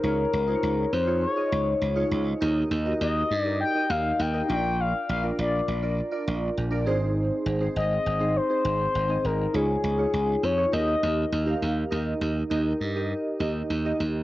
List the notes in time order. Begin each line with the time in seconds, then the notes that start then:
0.03 C#2 D#4 F4 G#4 A#4 C#5
0.33 C#2
0.48 D#4 F4 G#4 C5
0.55 C#5
0.63 C#2
0.93 F2 C5
1.07 D#4 F4 G#4 C#5
1.22 C#5
1.36 D#4 F4 G#4 D#5
1.52 C#2
1.81 C#2
1.96 D#4 F4 G#4 C#5
2.11 C#2
2.40 D#2 D#4 G4 A#4 D#5
2.71 D#2
2.85 D#4 F#4 A#4 D#5
2.92 G4
3.01 D#2 D#5
3.31 G2
3.42 D#4 G4 A#4 D5
3.46 D#5
3.61 G5
3.75 D#4 G4 A#4 D#5
3.90 D#2 F5
4.20 D#2 G5
4.34 D#4 G4 A#4 D#5
4.48 A#1 D4 F4 A#4 D5 G5
4.80 F5
5.09 A#1 F5
5.23 D4 F4 A#4 D5
5.39 A#1 D5
5.68 A#1
5.82 D4 F4 A#4 D5
6.11 D4 F4 A#4 D5
6.27 A#1
6.57 A#1
6.70 D4 F4 A#4 D5
6.86 G#1 C4 D#4 G#4 C5
7.46 G#1
7.60 C4 D#4 G#4 C5
7.76 G#1 D#5
8.06 G#1
8.20 C4 D#4 G#4 C5
8.37 C5
8.50 C4 D#4 G#4 C5
8.65 G#1
8.95 G#1
9.09 C4 D#4 G#4 D#5
9.24 G#1 A#4
9.54 C#2 D#4 F4 G#4 C#5
9.84 C#2
9.98 D#4 F4 G#4 C#5
10.14 C#2
10.43 F2 C#5
10.57 D#4 F4 G#4 C#5
10.72 D#2 D#4 G4 A#4 D#5
10.87 D#4 G4 A#4 D#5
11.03 D#2
11.32 D#2
11.46 D#4 G4 A#4 F5
11.62 D#2
11.91 D#2 D#4 G4 A#4 D#5
12.21 D#2
12.50 D#2 D#4 G4 A#4 D#5
12.81 G2
12.96 D#4 G4 A#4 D#5
13.39 D#2 D#4 G4 A#4 D#5
13.70 D#2
13.85 D#4 G4 A#4 D#5
14.00 D#2